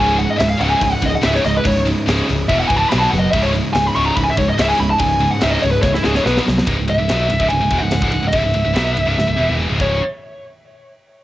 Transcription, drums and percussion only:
0.19 crash
0.40 snare, crash
0.61 crash
0.81 kick, crash
1.02 kick, crash
1.22 snare, crash
1.35 snare
1.45 snare, crash
1.65 kick, crash
1.87 crash
2.08 snare, crash
2.29 crash
2.49 kick, crash
2.70 kick, crash
2.91 snare, crash
3.02 snare
3.13 snare, crash
3.33 kick, crash
3.55 crash
3.75 snare, crash
3.96 crash
4.17 kick, crash
4.37 kick, crash
4.58 snare, crash
4.78 crash
4.99 kick, crash
5.20 crash
5.41 snare, crash
5.63 crash
5.83 kick, snare
5.94 snare
6.04 snare
6.15 snare
6.26 snare
6.37 snare
6.48 snare
6.58 snare
6.67 kick, ride
6.88 ride
7.09 snare, ride
7.30 ride
7.40 kick
7.50 ride
7.70 kick, ride
7.91 snare, ride
8.02 kick
8.12 ride
8.32 kick, ride
8.54 ride
8.76 snare, ride
8.97 ride
9.19 snare
9.39 high tom
9.49 high tom
9.59 mid tom
9.80 kick, crash

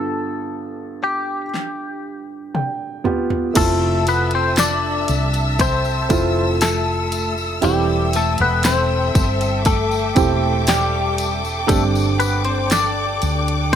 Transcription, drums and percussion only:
1.54 snare
2.55 mid tom
3.05 floor tom
3.30 floor tom
3.55 kick, closed hi-hat, crash, tambourine
4.07 closed hi-hat, tambourine
4.31 closed hi-hat
4.56 snare, closed hi-hat, tambourine
5.08 closed hi-hat, tambourine
5.33 closed hi-hat, tambourine
5.59 kick, closed hi-hat, tambourine
5.85 tambourine
6.10 kick, closed hi-hat, tambourine
6.61 snare, closed hi-hat, tambourine
7.12 closed hi-hat, tambourine
7.38 tambourine
7.62 closed hi-hat, tambourine
8.13 closed hi-hat, tambourine
8.38 closed hi-hat
8.63 snare, closed hi-hat, tambourine
9.15 kick, closed hi-hat, tambourine
9.41 closed hi-hat, tambourine
9.65 kick, closed hi-hat, tambourine
9.91 tambourine
10.16 kick, closed hi-hat, tambourine
10.67 snare, closed hi-hat, tambourine
11.18 closed hi-hat, tambourine
11.45 tambourine
11.69 kick, closed hi-hat, tambourine
11.95 tambourine
12.20 closed hi-hat, tambourine
12.45 closed hi-hat
12.70 snare, closed hi-hat, tambourine
13.22 closed hi-hat, tambourine
13.48 closed hi-hat

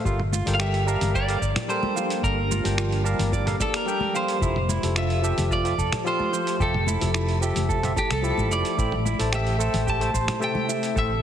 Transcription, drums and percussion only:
0.05 kick, shaker
0.20 mid tom
0.32 high conga, shaker
0.47 open hi-hat, high bongo, shaker
0.60 finger snap, shaker
0.74 open hi-hat
0.88 shaker
1.01 open hi-hat, high conga, low conga, shaker
1.14 kick, shaker
1.29 open hi-hat, shaker
1.42 kick, shaker
1.56 finger snap, mid tom, open hi-hat, high bongo, shaker
1.70 shaker
1.83 high bongo, high conga
1.97 high bongo, shaker
2.10 open hi-hat, shaker
2.23 kick, shaker
2.51 high conga, shaker
2.65 open hi-hat, high bongo, shaker
2.78 finger snap, shaker
2.92 open hi-hat
3.06 shaker
3.19 open hi-hat, high conga, low conga, shaker
3.32 kick, high bongo, shaker
3.47 mid tom, open hi-hat, shaker
3.60 kick, high bongo, shaker
3.74 finger snap, open hi-hat, shaker
3.88 shaker
4.00 high conga
4.15 shaker
4.28 open hi-hat, shaker
4.42 kick, shaker
4.56 mid tom
4.69 high conga, shaker
4.83 open hi-hat, high bongo, shaker
4.96 finger snap, shaker
5.10 open hi-hat
5.24 shaker
5.37 open hi-hat, high conga, low conga, shaker
5.51 kick, shaker
5.65 open hi-hat, shaker
5.78 kick, shaker
5.92 finger snap, mid tom, open hi-hat, high bongo, shaker
6.06 shaker
6.19 high bongo, high conga
6.33 high bongo, shaker
6.47 open hi-hat, shaker
6.60 kick, shaker
6.74 mid tom
6.87 high conga, shaker
7.01 open hi-hat, high bongo, shaker
7.14 finger snap, shaker
7.29 open hi-hat
7.42 shaker
7.56 open hi-hat, high conga, low conga, shaker
7.69 kick, high bongo, shaker
7.83 mid tom, open hi-hat, shaker
7.96 kick, high bongo, shaker
8.11 finger snap, open hi-hat, shaker
8.24 shaker
8.38 high conga, shaker
8.52 shaker
8.65 open hi-hat, shaker
8.78 kick, shaker
8.92 mid tom
9.05 high conga, shaker
9.19 open hi-hat, high bongo, shaker
9.33 finger snap, shaker
9.47 open hi-hat
9.61 shaker
9.74 open hi-hat, high conga, low conga, shaker
9.87 kick, shaker
10.01 open hi-hat, shaker
10.14 kick, shaker
10.28 finger snap, mid tom, open hi-hat, high bongo, shaker
10.42 shaker
10.55 high bongo, high conga
10.69 high bongo, shaker
10.83 open hi-hat, shaker
10.96 kick, shaker

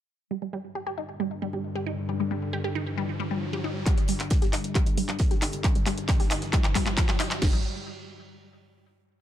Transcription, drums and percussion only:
3.86 kick, clap, closed hi-hat
3.98 closed hi-hat
4.08 closed hi-hat, open hi-hat
4.20 clap, closed hi-hat
4.30 kick, snare, closed hi-hat
4.42 snare, closed hi-hat
4.53 clap, closed hi-hat, open hi-hat
4.64 closed hi-hat
4.75 kick, clap, closed hi-hat
4.86 closed hi-hat
4.97 closed hi-hat, open hi-hat
5.09 clap, closed hi-hat
5.19 kick, snare, closed hi-hat, open hi-hat
5.31 snare, closed hi-hat
5.42 clap, closed hi-hat, open hi-hat
5.52 closed hi-hat
5.64 kick, clap, closed hi-hat
5.75 closed hi-hat
5.86 clap, closed hi-hat, open hi-hat
5.98 closed hi-hat
6.09 kick, snare, clap, closed hi-hat
6.20 snare, open hi-hat
6.30 snare, clap, closed hi-hat, open hi-hat
6.42 snare, closed hi-hat
6.53 kick, clap, closed hi-hat
6.64 clap, closed hi-hat
6.75 kick, clap, closed hi-hat, open hi-hat
6.86 snare, clap, closed hi-hat
6.97 kick, snare, clap, closed hi-hat
7.09 snare, clap, closed hi-hat
7.20 clap, closed hi-hat, open hi-hat
7.31 clap, closed hi-hat
7.42 kick, snare, crash

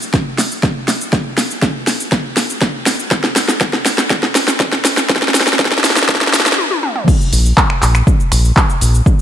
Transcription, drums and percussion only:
0.02 shaker
0.14 kick, snare, shaker
0.38 snare, open hi-hat, shaker
0.52 shaker
0.63 kick, snare, shaker
0.88 snare, open hi-hat, shaker
1.01 shaker
1.13 kick, snare, shaker
1.38 snare, open hi-hat, shaker
1.51 shaker
1.62 kick, snare, shaker
1.87 snare, open hi-hat, shaker
2.00 shaker
2.12 kick, snare, shaker
2.37 snare, open hi-hat, shaker
2.50 shaker
2.61 kick, snare, shaker
2.86 snare, open hi-hat, shaker
2.99 shaker
3.11 kick, snare, shaker
3.24 snare
3.36 snare, open hi-hat, shaker
3.48 snare, shaker
3.61 kick, snare, shaker
3.73 snare
3.86 snare, open hi-hat, shaker
3.98 snare, shaker
4.10 kick, snare, shaker
4.23 snare
4.35 snare, open hi-hat, shaker
4.48 snare, shaker
4.60 kick, snare, shaker
4.72 snare
4.85 snare, open hi-hat, shaker
4.97 snare, shaker
5.09 kick, snare, shaker
5.16 snare
5.22 snare
5.28 snare
5.34 snare, open hi-hat, shaker
5.40 snare
5.47 snare, shaker
5.53 snare
5.59 kick, snare, shaker
5.65 snare
5.72 snare
5.78 snare
5.84 snare, open hi-hat, shaker
5.90 snare
5.96 snare, shaker
6.02 snare
6.09 kick, snare, shaker
6.15 snare
6.21 snare
6.27 snare
6.33 snare, open hi-hat, shaker
6.40 snare
6.46 snare, shaker
6.52 snare
6.58 high tom
6.71 high tom
6.83 mid tom
6.96 mid tom
7.08 kick, crash, shaker
7.21 shaker
7.33 open hi-hat, shaker
7.46 shaker
7.57 kick, clap, shaker
7.70 finger snap
7.82 clap, open hi-hat, shaker
7.95 finger snap, shaker
8.07 kick, shaker
8.20 shaker
8.32 finger snap, open hi-hat, shaker
8.45 shaker
8.57 kick, clap, shaker
8.70 shaker
8.81 open hi-hat, shaker
8.95 shaker
9.06 kick, shaker

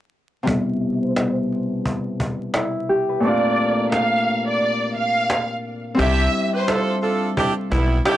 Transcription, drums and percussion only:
0.47 cajon bass
1.16 cajon slap
1.52 cajon slap
1.86 cajon bass
2.20 cajon bass
2.54 cajon slap
3.23 cajon slap
3.92 cajon slap
4.28 cajon slap
4.61 cajon slap
4.94 cajon slap
5.30 cajon slap
5.99 cajon bass
6.68 cajon slap
7.04 cajon slap
7.37 cajon bass
7.72 cajon bass
8.06 cajon slap

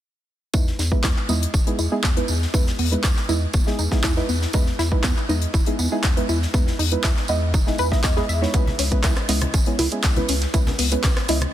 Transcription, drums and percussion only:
0.54 kick, tambourine
0.67 snare
0.79 snare, tambourine
0.92 kick
1.04 kick, snare, clap, tambourine
1.17 clap
1.29 tambourine
1.43 closed hi-hat
1.54 kick, tambourine
1.67 closed hi-hat
1.79 tambourine
2.04 kick, snare, clap, tambourine
2.17 closed hi-hat
2.28 tambourine
2.42 snare
2.54 kick, tambourine
2.67 snare
2.79 open hi-hat
2.93 closed hi-hat
3.04 kick, snare, clap, tambourine
3.16 snare, clap
3.29 tambourine
3.53 kick, tambourine
3.67 snare
3.79 tambourine
3.91 kick, snare
4.04 kick, snare, clap, tambourine
4.17 snare
4.29 tambourine
4.42 snare
4.53 kick, tambourine
4.66 snare
4.79 snare, tambourine
4.92 kick
5.03 kick, snare, clap, tambourine
5.17 clap
5.29 tambourine
5.42 closed hi-hat
5.54 kick, tambourine
5.66 closed hi-hat
5.79 tambourine
6.03 kick, snare, clap, tambourine
6.17 closed hi-hat
6.29 tambourine
6.42 snare
6.54 kick, tambourine
6.67 snare
6.79 open hi-hat
6.91 closed hi-hat
7.04 kick, snare, clap, tambourine
7.17 snare, clap
7.28 tambourine
7.54 kick, tambourine
7.67 snare
7.78 tambourine
7.92 kick, snare
8.04 kick, snare, clap, tambourine
8.16 snare
8.29 tambourine
8.43 snare
8.54 kick, closed hi-hat, tambourine
8.67 snare, high conga
8.79 snare, open hi-hat, tambourine
8.92 kick, closed hi-hat
9.04 kick, snare, clap, closed hi-hat, tambourine, cowbell, high conga
9.16 cross-stick, clap, closed hi-hat
9.29 open hi-hat, tambourine
9.41 cross-stick, closed hi-hat, high conga
9.54 kick, closed hi-hat, tambourine
9.66 closed hi-hat
9.79 open hi-hat, tambourine, cowbell, high conga
9.92 closed hi-hat
10.03 kick, snare, clap, closed hi-hat, tambourine
10.16 closed hi-hat, high conga
10.28 open hi-hat, tambourine
10.42 snare, closed hi-hat
10.54 kick, closed hi-hat, tambourine
10.67 snare, cowbell, high conga
10.79 open hi-hat
10.92 closed hi-hat
11.04 kick, snare, clap, closed hi-hat, tambourine, cowbell, high conga
11.17 cross-stick, snare, clap, closed hi-hat
11.28 open hi-hat, tambourine
11.41 cross-stick, closed hi-hat, high conga

